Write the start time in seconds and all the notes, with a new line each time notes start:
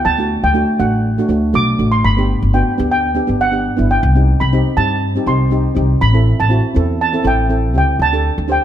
0.05 D2 A5
0.18 A3 D4 F#4
0.43 D2 G5
0.54 A3 D4 F#4
0.79 A1 A3 D4 F#4 F#5
1.18 A3 D4 F#4
1.28 D2 A3 D4 F#4
1.53 B1 A3 D4 F#4 D6
1.79 A1 A3 D4 F#4
1.92 C6
2.04 G1 B5
2.17 B3 D4 G4
2.42 G1
2.53 B3 D4 F#4 G5
2.78 D2 B3 D4 G4
2.92 G5
3.14 B3 D4 G4
3.27 G1 B3 D4 G4
3.41 F#5
3.52 B3 D4 G4
3.77 G1 B3 D4 E4
3.91 G5
4.03 C2
4.15 C4 D#4 G4
4.40 C2 B5
4.53 C4 D#4 G4
4.77 G2 C4 D#4 G4 A5
5.16 C4 D#4 G4
5.26 C2 C4 D#4 G4 C6
5.50 C4 D#4 G4
5.75 C2 C4 D#4 G4
6.01 A1 B5
6.13 C4 E4 A4
6.40 A1 A5
6.49 C4 E4 F#4
6.75 E2 C4 E4 A4
7.01 A5
7.13 C4 E4 A4
7.23 A1 C4 E4 A4
7.27 G5
7.49 C4 E4 A4
7.74 C#2 C4 E4 G4 G5
7.99 D2 A5
8.12 D4 G4 A4
8.38 D2
8.48 D4 G4 C5 G5